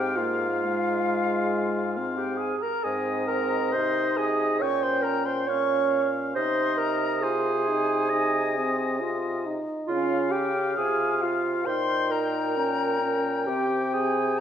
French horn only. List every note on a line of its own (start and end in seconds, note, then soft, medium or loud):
0.00 0.20 C4 medium
0.18 0.50 A#3 medium
0.63 1.99 G#3 medium
1.97 2.58 C4 medium
2.85 3.76 C4 medium
3.74 4.65 D#4 medium
4.63 5.49 C#4 medium
5.50 6.38 C#4 medium
6.37 7.25 D#4 medium
7.24 7.70 F4 medium
7.68 8.11 D#4 medium
8.12 8.59 D#4 medium
8.57 9.02 C4 medium
9.01 9.48 F4 medium
9.46 9.90 D#4 medium
9.91 10.51 C#4 medium
10.79 11.64 F4 medium
11.67 12.58 D#4 medium
12.57 13.01 C#4 medium
13.02 13.50 C#4 medium
13.49 14.40 C4 medium